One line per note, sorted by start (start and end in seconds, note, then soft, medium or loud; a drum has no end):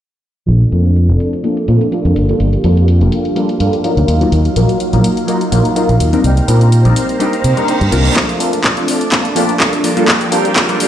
0.47 0.63 A#1 medium
0.47 1.43 F3 medium
0.47 1.44 A3 medium
0.47 2.15 A4 medium
0.47 2.15 D5 medium
0.47 closed hi-hat medium
0.51 1.46 D4 medium
0.61 closed hi-hat soft
0.72 1.10 F2 medium
0.72 0.91 A#3 medium
0.72 0.92 C4 medium
0.72 0.92 D4 medium
0.72 0.92 F4 medium
0.72 0.92 A4 medium
0.72 closed hi-hat medium
0.85 closed hi-hat soft
0.96 closed hi-hat medium
1.09 1.16 F1 medium
1.09 1.42 C4 medium
1.09 1.42 D4 medium
1.09 1.42 F4 medium
1.09 1.42 A4 medium
1.09 closed hi-hat soft
1.20 closed hi-hat medium
1.33 closed hi-hat soft
1.43 1.91 F3 medium
1.43 1.92 A3 medium
1.43 1.57 A#3 medium
1.43 1.57 C4 medium
1.43 1.57 D4 medium
1.43 1.94 D4 medium
1.43 1.57 F4 medium
1.43 1.57 A4 medium
1.43 closed hi-hat medium
1.57 closed hi-hat soft
1.68 1.76 A#2 medium
1.68 1.87 A#3 medium
1.68 1.88 C4 medium
1.68 1.88 D4 medium
1.68 1.88 F4 medium
1.68 1.88 A4 loud
1.68 closed hi-hat medium
1.81 closed hi-hat soft
1.91 2.16 F3 medium
1.91 2.26 G3 medium
1.91 2.17 A3 medium
1.91 2.26 A#3 medium
1.91 2.26 D4 medium
1.91 2.14 D4 medium
1.91 2.26 F4 medium
1.91 2.26 A4 medium
1.91 closed hi-hat medium
2.05 2.12 F2 loud
2.05 closed hi-hat soft
2.15 2.31 G1 medium
2.15 3.37 A#3 medium
2.15 3.36 D4 medium
2.15 4.06 G4 medium
2.15 6.20 F5 medium
2.15 closed hi-hat medium
2.19 3.35 F3 medium
2.29 2.48 G3 medium
2.29 2.48 A#3 medium
2.29 2.48 D4 medium
2.29 2.48 F4 medium
2.29 2.48 A4 loud
2.29 closed hi-hat soft
2.40 2.55 G1 medium
2.40 closed hi-hat medium
2.53 closed hi-hat soft
2.64 3.03 F2 medium
2.64 2.83 G3 medium
2.64 2.83 A#3 medium
2.64 2.84 D4 medium
2.64 2.84 F4 medium
2.64 2.84 A4 medium
2.64 closed hi-hat medium
2.77 closed hi-hat soft
2.88 closed hi-hat medium
3.01 3.08 F1 medium
3.01 3.33 G3 medium
3.01 3.33 A#3 medium
3.01 3.33 D4 medium
3.01 3.34 F4 medium
3.01 3.34 A4 medium
3.01 closed hi-hat soft
3.12 closed hi-hat medium
3.25 closed hi-hat soft
3.35 3.83 F3 medium
3.35 3.49 G3 medium
3.35 3.49 A#3 medium
3.35 3.84 A#3 medium
3.35 3.49 D4 medium
3.35 3.85 D4 medium
3.35 3.49 F4 medium
3.35 3.49 A4 medium
3.35 closed hi-hat medium
3.49 closed hi-hat soft
3.60 3.68 G2 medium
3.60 3.79 G3 medium
3.60 3.80 A#3 medium
3.60 3.80 D4 medium
3.60 3.80 F4 medium
3.60 3.80 A4 loud
3.60 closed hi-hat medium
3.73 closed hi-hat soft
3.83 4.08 F3 medium
3.83 4.18 F#3 medium
3.83 4.18 A#3 medium
3.83 4.09 A#3 medium
3.83 4.08 D4 medium
3.83 4.18 D#4 medium
3.83 4.18 F4 medium
3.83 4.18 A#4 medium
3.83 closed hi-hat medium
3.97 4.04 D2 loud
3.97 closed hi-hat soft
4.07 4.23 D#2 medium
4.07 6.22 F#3 medium
4.07 5.28 A#3 medium
4.07 5.29 D#4 medium
4.07 5.28 F4 medium
4.07 8.12 F6 medium
4.07 closed hi-hat medium
4.12 5.26 F#3 medium
4.21 4.40 F#3 medium
4.21 4.40 A#3 medium
4.21 4.40 D#4 medium
4.21 4.40 F4 medium
4.21 4.40 A#4 loud
4.21 closed hi-hat soft
4.32 4.47 D#2 medium
4.32 closed hi-hat medium
4.45 closed hi-hat soft
4.56 4.64 A#1 medium
4.56 4.76 F#3 medium
4.56 4.76 A#3 medium
4.56 4.76 D#4 medium
4.56 4.76 F4 medium
4.56 4.76 A#4 medium
4.56 closed hi-hat medium
4.69 closed hi-hat soft
4.80 closed hi-hat medium
4.93 5.00 A#1 loud
4.93 5.25 F#3 medium
4.93 5.26 A#3 medium
4.93 5.26 D#4 medium
4.93 5.26 F4 medium
4.93 5.26 A#4 medium
4.93 closed hi-hat soft
5.04 closed hi-hat medium
5.17 closed hi-hat soft
5.27 5.74 F#3 medium
5.27 5.41 F#3 medium
5.27 5.41 A#3 medium
5.27 5.76 A#3 medium
5.27 5.41 D#4 medium
5.27 5.77 D#4 medium
5.27 5.41 F4 medium
5.27 5.77 F4 medium
5.27 5.41 A#4 medium
5.27 closed hi-hat medium
5.41 closed hi-hat soft
5.52 5.60 A#1 medium
5.52 5.71 F#3 medium
5.52 5.72 A#3 medium
5.52 5.72 D#4 medium
5.52 5.72 F4 medium
5.52 5.72 A#4 loud
5.52 closed hi-hat medium
5.65 closed hi-hat soft
5.75 6.24 F#3 medium
5.75 6.10 F#3 medium
5.75 6.10 A#3 medium
5.75 6.22 A#3 medium
5.75 6.10 D#4 medium
5.75 6.24 D#4 medium
5.75 6.10 F4 medium
5.75 6.25 F4 medium
5.75 6.10 A#4 medium
5.75 closed hi-hat medium
5.89 5.96 A#1 loud
5.89 closed hi-hat soft
6.00 6.15 D#2 medium
6.00 closed hi-hat medium
6.13 6.32 G3 medium
6.13 6.32 C4 medium
6.13 6.32 D4 medium
6.13 6.32 D#4 medium
6.13 6.32 A#4 loud
6.13 closed hi-hat soft
6.23 6.39 C2 loud
6.23 7.19 A#3 medium
6.23 7.20 D#4 medium
6.23 8.14 C5 medium
6.23 8.14 A#5 medium
6.23 closed hi-hat medium
6.27 7.21 G4 loud
6.37 closed hi-hat soft
6.48 6.86 A#2 medium
6.48 6.67 G3 medium
6.48 6.67 C4 medium
6.48 6.67 D4 medium
6.48 6.68 D#4 medium
6.48 6.68 A#4 medium
6.48 closed hi-hat medium
6.61 closed hi-hat soft
6.72 closed hi-hat medium
6.85 6.92 A#1 medium
6.85 7.17 G3 medium
6.85 7.17 C4 medium
6.85 7.18 D#4 medium
6.85 7.18 A#4 medium
6.85 7.18 D5 medium
6.85 closed hi-hat soft
6.96 closed hi-hat medium
7.09 closed hi-hat soft
7.19 7.33 G3 medium
7.19 7.67 A#3 medium
7.19 7.33 C4 medium
7.19 7.33 D4 medium
7.19 7.33 D#4 medium
7.19 7.68 D#4 medium
7.19 7.69 G4 medium
7.19 7.33 A#4 medium
7.19 closed hi-hat medium
7.19 reverse cymbal medium
7.33 closed hi-hat soft
7.44 7.52 C3 medium
7.44 closed hi-hat medium
7.57 7.76 G3 medium
7.57 7.76 C4 medium
7.57 7.76 D4 medium
7.57 7.76 D#4 medium
7.57 7.76 A#4 loud
7.57 closed hi-hat soft
7.67 8.16 A#3 medium
7.67 8.17 D#4 medium
7.67 8.17 G4 medium
7.67 closed hi-hat medium
7.81 7.88 G2 loud
7.81 closed hi-hat soft
7.92 8.07 C2 medium
7.92 8.37 A#3 medium
7.92 8.37 C4 medium
7.92 8.38 D4 medium
7.92 8.38 F4 medium
7.92 8.38 A#4 medium
7.92 closed hi-hat medium
8.05 closed hi-hat soft
8.16 8.31 A#1 medium
8.16 8.53 F3 medium
8.16 8.53 A3 loud
8.16 8.51 D4 loud
8.16 9.83 A5 medium
8.16 9.83 D6 medium
8.16 kick loud
8.16 clap soft
8.16 closed hi-hat medium
8.16 riser medium
8.29 closed hi-hat soft
8.40 8.79 F2 loud
8.40 8.59 A#3 medium
8.40 8.59 C4 medium
8.40 8.60 D4 medium
8.40 8.60 F4 medium
8.40 8.60 A4 medium
8.40 open hi-hat loud
8.52 8.64 A3 soft
8.52 8.64 D4 medium
8.52 closed hi-hat soft
8.64 8.86 F3 medium
8.64 8.88 A3 medium
8.64 8.89 D4 medium
8.64 kick loud
8.64 clap soft
8.64 closed hi-hat medium
8.77 8.84 F1 loud
8.77 9.09 C4 medium
8.77 9.10 D4 medium
8.77 9.10 F4 medium
8.77 9.10 A4 medium
8.77 closed hi-hat soft
8.88 9.01 F3 medium
8.88 9.02 A3 medium
8.88 8.99 D4 medium
8.88 open hi-hat loud
9.00 9.26 A3 soft
9.00 9.23 D4 medium
9.00 closed hi-hat soft
9.12 9.25 A#3 medium
9.12 9.25 C4 medium
9.12 9.25 D4 medium
9.12 9.25 F4 medium
9.12 9.25 A4 medium
9.12 kick loud
9.12 clap medium
9.12 closed hi-hat medium
9.24 9.36 A3 soft
9.24 9.36 D4 medium
9.24 closed hi-hat soft
9.35 9.44 A#2 medium
9.35 9.58 F3 medium
9.35 9.59 A3 medium
9.35 9.55 A#3 medium
9.35 9.55 C4 medium
9.35 9.56 D4 medium
9.35 9.60 D4 medium
9.35 9.56 F4 medium
9.35 9.56 A4 loud
9.35 open hi-hat loud
9.49 closed hi-hat soft
9.59 9.73 F3 medium
9.59 9.94 G3 medium
9.59 9.73 A3 medium
9.59 9.94 A#3 medium
9.59 9.94 D4 medium
9.59 9.71 D4 loud
9.59 9.94 F4 medium
9.59 9.94 A4 medium
9.59 kick loud
9.59 clap medium
9.59 closed hi-hat medium
9.72 9.80 F2 loud
9.72 9.84 A3 soft
9.72 9.84 D4 medium
9.72 closed hi-hat soft
9.84 9.99 G1 medium
9.84 10.55 F3 medium
9.84 10.47 A#3 medium
9.84 10.43 D4 medium
9.84 10.88 G4 medium
9.84 10.88 F5 medium
9.84 10.88 G5 medium
9.84 open hi-hat loud
9.97 10.15 G3 medium
9.97 10.16 A#3 medium
9.97 10.16 D4 medium
9.97 10.16 F4 medium
9.97 10.16 A4 loud
9.97 closed hi-hat soft
10.08 10.23 G1 loud
10.08 kick loud
10.08 clap medium
10.08 closed hi-hat medium
10.21 closed hi-hat soft
10.31 10.71 F2 loud
10.31 10.51 G3 medium
10.31 10.51 A#3 medium
10.31 10.51 D4 medium
10.31 10.52 F4 medium
10.31 10.52 A4 medium
10.31 open hi-hat loud
10.44 10.55 A#3 soft
10.44 10.56 D4 medium
10.44 closed hi-hat soft
10.55 10.78 F3 medium
10.55 10.80 A#3 medium
10.55 10.81 D4 loud
10.55 kick loud
10.55 clap medium
10.55 closed hi-hat medium
10.69 10.76 F1 loud
10.69 10.88 G3 medium
10.69 10.88 A#3 medium
10.69 10.88 D4 medium
10.69 10.88 F4 medium
10.69 10.88 A4 medium
10.69 closed hi-hat soft
10.79 10.88 F3 medium
10.79 10.88 A#3 medium
10.79 10.88 D4 medium
10.79 open hi-hat loud